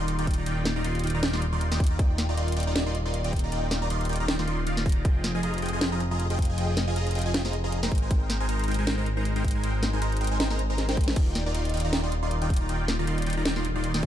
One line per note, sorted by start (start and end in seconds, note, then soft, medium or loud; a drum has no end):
0.00 5.03 D#1 medium
0.00 0.16 D#3 medium
0.00 0.16 D#4 medium
0.00 0.16 F4 medium
0.00 0.16 D5 medium
0.00 0.16 C6 medium
0.08 closed hi-hat medium
0.19 0.35 D#3 loud
0.19 0.35 D#4 medium
0.19 0.35 F4 medium
0.19 0.35 D5 medium
0.19 0.35 G5 loud
0.19 closed hi-hat medium
0.27 kick medium
0.27 closed hi-hat medium
0.31 closed hi-hat medium
0.34 closed hi-hat medium
0.38 0.45 D#3 loud
0.38 0.45 D#4 medium
0.38 0.45 F4 medium
0.38 0.45 D5 medium
0.38 0.45 A#5 loud
0.46 0.74 D#3 medium
0.46 0.74 D#4 medium
0.46 0.74 F4 medium
0.46 0.74 D5 medium
0.46 0.74 G5 loud
0.46 closed hi-hat medium
0.65 snare medium
0.65 closed hi-hat medium
0.76 0.83 D#3 loud
0.76 0.83 D#4 medium
0.76 0.83 F4 medium
0.76 0.83 D5 medium
0.76 0.83 A#5 loud
0.84 1.02 D#3 medium
0.84 1.02 D#4 medium
0.84 1.02 F4 medium
0.84 1.02 D5 medium
0.84 1.02 C6 loud
0.84 closed hi-hat medium
0.95 closed hi-hat medium
0.99 closed hi-hat medium
1.04 1.12 D#3 medium
1.04 1.12 D#4 medium
1.04 1.12 F4 medium
1.04 1.12 D5 medium
1.04 1.12 G5 medium
1.04 closed hi-hat medium
1.07 closed hi-hat medium
1.10 closed hi-hat medium
1.14 1.21 D#3 loud
1.14 1.21 D#4 medium
1.14 1.21 F4 medium
1.14 1.21 D5 medium
1.14 1.21 A#5 loud
1.23 1.31 D#3 medium
1.23 1.31 D#4 medium
1.23 1.31 F4 medium
1.23 1.31 D5 medium
1.23 1.31 G5 medium
1.23 snare loud
1.23 closed hi-hat medium
1.33 1.44 D#3 medium
1.33 1.44 D#4 medium
1.33 1.44 F4 medium
1.33 1.44 D5 medium
1.33 1.44 C6 loud
1.33 snare medium
1.42 closed hi-hat medium
1.53 1.69 D#3 medium
1.53 1.69 D#4 medium
1.53 1.69 F4 medium
1.53 1.69 D5 medium
1.53 1.69 C6 medium
1.61 closed hi-hat medium
1.72 1.88 D#3 loud
1.72 1.88 D#4 medium
1.72 1.88 F4 medium
1.72 1.88 D5 medium
1.72 1.88 G5 loud
1.72 snare medium
1.72 closed hi-hat medium
1.80 kick loud
1.80 closed hi-hat medium
1.84 closed hi-hat medium
1.87 closed hi-hat medium
1.91 1.98 D#3 loud
1.91 1.98 D#4 medium
1.91 1.98 F4 medium
1.91 1.98 D5 medium
1.91 1.98 A#5 loud
1.99 2.26 D#3 medium
1.99 2.26 D#4 medium
1.99 2.26 F4 medium
1.99 2.26 D5 medium
1.99 2.26 G5 loud
1.99 kick loud
1.99 closed hi-hat medium
2.18 snare medium
2.18 closed hi-hat medium
2.29 2.35 D#3 loud
2.29 2.35 D#4 medium
2.29 2.35 F4 medium
2.29 2.35 D5 medium
2.29 2.35 A#5 loud
2.37 2.54 D#3 medium
2.37 2.54 D#4 medium
2.37 2.54 F4 medium
2.37 2.54 D5 medium
2.37 2.54 C6 loud
2.37 closed hi-hat medium
2.48 closed hi-hat medium
2.52 closed hi-hat medium
2.57 2.65 D#3 medium
2.57 2.65 D#4 medium
2.57 2.65 F4 medium
2.57 2.65 D5 medium
2.57 2.65 G5 medium
2.57 closed hi-hat soft
2.60 closed hi-hat medium
2.63 closed hi-hat medium
2.67 2.74 D#3 loud
2.67 2.74 D#4 medium
2.67 2.74 F4 medium
2.67 2.74 D5 medium
2.67 2.74 A#5 loud
2.76 2.84 D#3 medium
2.76 2.84 D#4 medium
2.76 2.84 F4 medium
2.76 2.84 D5 medium
2.76 2.84 G5 medium
2.76 snare loud
2.76 closed hi-hat medium
2.86 2.97 D#3 medium
2.86 2.97 D#4 medium
2.86 2.97 F4 medium
2.86 2.97 D5 medium
2.86 2.97 C6 loud
2.95 closed hi-hat medium
3.05 3.22 D#3 medium
3.05 3.22 D#4 medium
3.05 3.22 F4 medium
3.05 3.22 D5 medium
3.05 3.22 C6 medium
3.14 closed hi-hat medium
3.24 3.41 D#3 loud
3.24 3.41 D#4 medium
3.24 3.41 F4 medium
3.24 3.41 D5 medium
3.24 3.41 G5 loud
3.24 closed hi-hat medium
3.33 kick medium
3.33 closed hi-hat soft
3.36 closed hi-hat medium
3.39 closed hi-hat medium
3.44 3.51 D#3 loud
3.44 3.51 D#4 medium
3.44 3.51 F4 medium
3.44 3.51 D5 medium
3.44 3.51 A#5 loud
3.52 3.79 D#3 medium
3.52 3.79 D#4 medium
3.52 3.79 F4 medium
3.52 3.79 D5 medium
3.52 3.79 G5 loud
3.52 closed hi-hat medium
3.71 snare medium
3.71 closed hi-hat medium
3.82 3.88 D#3 loud
3.82 3.88 D#4 medium
3.82 3.88 F4 medium
3.82 3.88 D5 medium
3.82 3.88 A#5 loud
3.90 4.07 D#3 medium
3.90 4.07 D#4 medium
3.90 4.07 F4 medium
3.90 4.07 D5 medium
3.90 4.08 C6 loud
3.90 closed hi-hat medium
4.01 closed hi-hat soft
4.05 closed hi-hat medium
4.09 4.18 D#3 medium
4.09 4.18 D#4 medium
4.09 4.18 F4 medium
4.09 4.18 D5 medium
4.09 4.18 G5 medium
4.09 closed hi-hat soft
4.13 closed hi-hat medium
4.16 closed hi-hat medium
4.20 4.27 D#3 loud
4.20 4.27 D#4 medium
4.20 4.27 F4 medium
4.20 4.27 D5 medium
4.20 4.27 A#5 loud
4.28 4.37 D#3 medium
4.28 4.37 D#4 medium
4.28 4.37 F4 medium
4.28 4.37 D5 medium
4.28 4.37 G5 medium
4.28 snare loud
4.28 closed hi-hat medium
4.39 4.46 D#3 medium
4.39 4.46 D#4 medium
4.39 4.46 F4 medium
4.39 4.46 D5 medium
4.39 4.46 C6 loud
4.39 snare medium
4.48 4.64 D#3 medium
4.48 4.64 D#4 medium
4.48 4.64 F4 medium
4.48 4.64 D5 medium
4.48 4.64 C6 medium
4.48 closed hi-hat medium
4.67 4.84 D#3 medium
4.67 4.84 D#4 medium
4.67 4.84 F4 medium
4.67 4.84 D5 medium
4.67 4.84 F5 loud
4.67 closed hi-hat medium
4.77 snare medium
4.77 closed hi-hat medium
4.86 5.03 D#3 loud
4.86 5.03 D#4 medium
4.86 5.03 A#5 loud
4.86 kick loud
4.86 closed hi-hat medium
4.86 open hi-hat medium
4.92 closed hi-hat medium
5.05 7.90 F1 medium
5.05 5.32 F3 medium
5.05 5.32 F4 medium
5.05 5.32 G#4 medium
5.05 5.32 D#5 medium
5.05 5.32 G5 loud
5.05 kick loud
5.05 closed hi-hat medium
5.24 snare medium
5.24 closed hi-hat medium
5.35 5.41 F3 loud
5.35 5.41 F4 medium
5.35 5.41 G#4 medium
5.35 5.41 D#5 medium
5.35 5.41 G#5 loud
5.43 5.60 F3 medium
5.43 5.60 F4 medium
5.43 5.60 G#4 medium
5.43 5.60 D#5 medium
5.43 5.60 A#5 loud
5.43 closed hi-hat medium
5.54 closed hi-hat soft
5.58 closed hi-hat medium
5.62 5.70 F3 medium
5.62 5.70 F4 medium
5.62 5.70 G#4 medium
5.62 5.70 D#5 medium
5.62 5.70 G5 medium
5.62 closed hi-hat soft
5.66 closed hi-hat medium
5.69 closed hi-hat medium
5.73 5.79 F3 loud
5.73 5.79 F4 medium
5.73 5.79 G#4 medium
5.73 5.79 D#5 medium
5.73 5.79 G#5 loud
5.81 5.90 F3 medium
5.81 5.89 F4 medium
5.81 5.90 G#4 medium
5.81 5.90 D#5 medium
5.81 5.90 G5 medium
5.81 snare loud
5.81 closed hi-hat medium
5.92 6.03 F3 medium
5.92 6.03 F4 medium
5.92 6.03 G#4 medium
5.92 6.03 D#5 medium
5.92 6.03 A#5 loud
6.00 closed hi-hat medium
6.11 6.28 F3 medium
6.11 6.28 F4 medium
6.11 6.28 G#4 medium
6.11 6.28 D#5 medium
6.11 6.28 A#5 medium
6.20 closed hi-hat medium
6.30 6.47 F3 loud
6.30 6.47 F4 medium
6.30 6.47 G#4 medium
6.30 6.47 D#5 medium
6.30 6.47 G5 loud
6.30 closed hi-hat medium
6.39 kick medium
6.39 closed hi-hat soft
6.42 closed hi-hat medium
6.45 closed hi-hat medium
6.50 6.57 F3 loud
6.50 6.57 F4 medium
6.50 6.57 G#4 medium
6.50 6.57 D#5 medium
6.50 6.57 G#5 loud
6.58 6.85 F3 medium
6.58 6.85 F4 medium
6.58 6.85 G#4 medium
6.58 6.85 D#5 medium
6.58 6.85 G5 loud
6.58 closed hi-hat medium
6.77 snare medium
6.77 closed hi-hat medium
6.88 6.94 F3 loud
6.88 6.94 F4 medium
6.88 6.94 G#4 medium
6.88 6.94 D#5 medium
6.88 6.94 G#5 loud
6.96 7.13 F3 medium
6.96 7.13 F4 medium
6.96 7.13 G#4 medium
6.96 7.13 D#5 medium
6.96 7.13 A#5 loud
6.96 closed hi-hat medium
7.07 closed hi-hat soft
7.11 closed hi-hat medium
7.15 7.23 F3 medium
7.15 7.23 F4 medium
7.15 7.23 G#4 medium
7.15 7.23 D#5 medium
7.15 7.23 G5 medium
7.15 closed hi-hat soft
7.19 closed hi-hat medium
7.22 closed hi-hat medium
7.26 7.32 F3 loud
7.26 7.32 F4 medium
7.26 7.32 G#4 medium
7.26 7.32 D#5 medium
7.26 7.32 G#5 loud
7.34 7.42 F3 medium
7.34 7.42 F4 medium
7.34 7.42 G#4 medium
7.34 7.42 D#5 medium
7.34 7.42 G5 medium
7.34 snare loud
7.34 closed hi-hat medium
7.45 7.55 F3 medium
7.45 7.55 F4 medium
7.45 7.55 G#4 medium
7.45 7.55 D#5 medium
7.45 7.55 A#5 loud
7.45 snare medium
7.53 closed hi-hat medium
7.64 7.81 F3 medium
7.64 7.81 F4 medium
7.64 7.81 G#4 medium
7.64 7.81 D#5 medium
7.64 7.81 A#5 medium
7.72 closed hi-hat medium
7.83 8.00 G#3 loud
7.83 8.00 D#4 medium
7.83 8.00 A#4 medium
7.83 8.00 C5 medium
7.83 8.00 G5 loud
7.83 snare medium
7.83 closed hi-hat medium
7.92 11.15 G#1 medium
7.92 kick loud
7.92 closed hi-hat soft
7.95 closed hi-hat medium
7.98 closed hi-hat medium
8.02 8.10 G#3 loud
8.02 8.09 D#4 medium
8.02 8.09 A#4 medium
8.02 8.09 C5 medium
8.02 8.09 G#5 loud
8.11 8.38 G#3 medium
8.11 8.38 D#4 medium
8.11 8.38 A#4 medium
8.11 8.38 G5 loud
8.11 kick loud
8.11 closed hi-hat medium
8.30 snare medium
8.30 closed hi-hat medium
8.40 8.47 G#3 loud
8.40 8.47 D#4 medium
8.40 8.47 A#4 medium
8.40 8.47 C5 medium
8.40 8.47 G#5 loud
8.49 8.66 G#3 medium
8.49 8.66 D#4 medium
8.49 8.66 A#4 medium
8.49 8.66 C5 medium
8.49 8.66 A#5 loud
8.49 closed hi-hat medium
8.59 closed hi-hat medium
8.64 closed hi-hat medium
8.68 8.76 G#3 medium
8.68 8.76 D#4 medium
8.68 8.76 A#4 medium
8.68 8.76 C5 medium
8.68 8.76 G5 medium
8.68 closed hi-hat soft
8.71 closed hi-hat medium
8.74 closed hi-hat medium
8.79 8.85 G#3 loud
8.79 8.85 D#4 medium
8.79 8.85 A#4 medium
8.79 8.85 C5 medium
8.79 8.85 G#5 loud
8.87 8.95 G#3 medium
8.87 8.95 D#4 medium
8.87 8.95 A#4 medium
8.87 8.95 C5 medium
8.87 8.95 G5 medium
8.87 snare loud
8.87 closed hi-hat medium
8.98 9.08 G#3 medium
8.98 9.08 D#4 medium
8.98 9.08 A#4 medium
8.98 9.08 C5 medium
8.98 9.08 A#5 loud
9.06 closed hi-hat medium
9.17 9.33 G#3 medium
9.17 9.33 D#4 medium
9.17 9.33 A#4 medium
9.17 9.33 C5 medium
9.17 9.33 A#5 medium
9.25 closed hi-hat medium
9.36 9.53 G#3 loud
9.36 9.53 D#4 medium
9.36 9.53 A#4 medium
9.36 9.53 C5 medium
9.36 9.53 G5 loud
9.36 closed hi-hat medium
9.44 kick medium
9.44 closed hi-hat soft
9.48 closed hi-hat medium
9.51 closed hi-hat medium
9.55 9.62 G#3 loud
9.55 9.62 D#4 medium
9.55 9.62 A#4 medium
9.55 9.62 C5 medium
9.55 9.62 G#5 loud
9.63 9.91 G#3 medium
9.63 9.91 D#4 medium
9.63 9.91 A#4 medium
9.63 9.91 C5 medium
9.63 9.91 G5 loud
9.63 closed hi-hat medium
9.83 snare medium
9.83 closed hi-hat medium
9.93 10.00 G#3 loud
9.93 10.00 D#4 medium
9.93 10.00 A#4 medium
9.93 10.00 C5 medium
9.93 10.00 G#5 loud
10.02 10.19 G#3 medium
10.02 10.19 D#4 medium
10.02 10.19 A#4 medium
10.02 10.19 C5 medium
10.02 10.19 A#5 loud
10.02 closed hi-hat medium
10.12 closed hi-hat medium
10.17 closed hi-hat medium
10.21 10.29 G#3 medium
10.21 10.29 D#4 medium
10.21 10.29 A#4 medium
10.21 10.29 C5 medium
10.21 10.29 G5 medium
10.21 closed hi-hat soft
10.24 closed hi-hat medium
10.27 closed hi-hat medium
10.31 10.38 G#3 loud
10.31 10.38 D#4 medium
10.31 10.38 A#4 medium
10.31 10.38 C5 medium
10.31 10.38 G#5 loud
10.40 10.48 G#3 medium
10.40 10.48 D#4 medium
10.40 10.48 A#4 medium
10.40 10.48 C5 medium
10.40 10.48 G5 medium
10.40 snare loud
10.40 closed hi-hat medium
10.51 10.61 G#3 medium
10.51 10.61 D#4 medium
10.51 10.61 A#4 medium
10.51 10.61 C5 medium
10.51 10.61 A#5 loud
10.51 snare medium
10.59 closed hi-hat medium
10.70 10.86 G#3 medium
10.70 10.86 D#4 medium
10.70 10.86 A#4 medium
10.70 10.86 C5 medium
10.70 10.86 A#5 medium
10.78 snare medium
10.78 closed hi-hat medium
10.89 11.05 G#3 loud
10.89 11.05 D#4 medium
10.89 11.05 A#4 medium
10.89 11.05 C5 medium
10.89 11.05 G5 loud
10.89 snare medium
10.89 closed hi-hat medium
10.97 kick loud
10.97 closed hi-hat soft
11.01 closed hi-hat medium
11.04 closed hi-hat medium
11.08 11.15 G#3 medium
11.08 11.15 D#4 medium
11.08 11.15 A#4 medium
11.08 11.15 C5 medium
11.08 11.15 G#5 loud
11.08 snare medium
11.16 14.06 D#1 medium
11.16 11.44 D#3 medium
11.16 11.44 D#4 medium
11.16 11.44 F4 medium
11.16 11.44 D5 medium
11.16 11.44 G5 loud
11.16 kick loud
11.16 closed hi-hat medium
11.16 crash medium
11.35 snare medium
11.35 closed hi-hat medium
11.46 11.53 D#3 loud
11.46 11.53 D#4 medium
11.46 11.53 F4 medium
11.46 11.53 D5 medium
11.46 11.53 A#5 loud
11.55 11.72 D#3 medium
11.55 11.72 D#4 medium
11.55 11.72 F4 medium
11.55 11.72 D5 medium
11.55 11.72 C6 medium
11.55 closed hi-hat medium
11.65 closed hi-hat medium
11.69 closed hi-hat medium
11.74 11.82 D#3 medium
11.74 11.82 D#4 medium
11.74 11.82 F4 medium
11.74 11.82 D5 medium
11.74 11.82 G5 loud
11.74 closed hi-hat medium
11.77 closed hi-hat medium
11.80 closed hi-hat medium
11.85 11.91 D#3 loud
11.85 11.91 D#4 medium
11.85 11.91 F4 medium
11.85 11.91 D5 medium
11.85 11.91 A#5 loud
11.93 12.01 D#3 medium
11.93 12.01 D#4 medium
11.93 12.01 F4 medium
11.93 12.01 D5 medium
11.93 12.01 G5 medium
11.93 snare loud
11.93 closed hi-hat medium
12.03 12.14 D#3 medium
12.03 12.14 D#4 medium
12.03 12.14 F4 medium
12.03 12.14 D5 medium
12.03 12.14 C6 loud
12.12 closed hi-hat medium
12.23 12.39 D#3 medium
12.23 12.39 D#4 medium
12.23 12.39 F4 medium
12.23 12.39 D5 medium
12.23 12.39 C6 medium
12.31 closed hi-hat medium
12.42 12.58 D#3 loud
12.42 12.58 D#4 medium
12.42 12.58 F4 medium
12.42 12.58 D5 medium
12.42 12.58 G5 loud
12.42 closed hi-hat medium
12.50 kick medium
12.50 closed hi-hat soft
12.54 closed hi-hat medium
12.56 closed hi-hat medium
12.61 12.68 D#3 loud
12.61 12.68 D#4 medium
12.61 12.68 F4 medium
12.61 12.68 D5 medium
12.61 12.68 A#5 loud
12.69 12.96 D#3 medium
12.69 12.96 D#4 medium
12.69 12.97 F4 medium
12.69 12.96 D5 medium
12.69 12.96 G5 loud
12.69 closed hi-hat medium
12.88 snare medium
12.88 closed hi-hat medium
12.99 13.06 D#3 loud
12.99 13.06 D#4 medium
12.99 13.06 F4 medium
12.99 13.06 D5 medium
12.99 13.06 A#5 loud
13.07 13.25 D#3 medium
13.07 13.25 D#4 medium
13.07 13.25 F4 medium
13.07 13.25 D5 medium
13.07 13.25 C6 loud
13.07 closed hi-hat medium
13.18 closed hi-hat medium
13.22 closed hi-hat medium
13.26 13.35 D#3 medium
13.26 13.35 D#4 medium
13.26 13.35 F4 medium
13.26 13.35 D5 medium
13.26 13.35 G5 medium
13.26 closed hi-hat medium
13.30 closed hi-hat medium
13.33 closed hi-hat medium
13.37 13.44 D#3 loud
13.37 13.44 D#4 medium
13.37 13.44 F4 medium
13.37 13.44 D5 medium
13.37 13.44 A#5 loud
13.45 13.54 D#3 medium
13.45 13.54 D#4 medium
13.45 13.54 F4 medium
13.45 13.54 D5 medium
13.45 13.54 G5 medium
13.45 snare loud
13.45 closed hi-hat medium
13.56 13.67 D#3 medium
13.56 13.67 D#4 medium
13.56 13.67 F4 medium
13.56 13.67 D5 medium
13.56 13.67 C6 loud
13.56 snare medium
13.65 closed hi-hat medium
13.76 13.92 D#3 medium
13.76 13.92 D#4 medium
13.76 13.92 F4 medium
13.76 13.92 D5 medium
13.76 13.92 C6 medium
13.84 closed hi-hat medium
13.94 14.06 D#3 loud
13.94 14.06 D#4 medium
13.94 14.06 F4 medium
13.94 14.06 D5 medium
13.94 14.06 G5 loud
13.94 snare medium
13.94 closed hi-hat medium
14.03 kick loud
14.03 closed hi-hat medium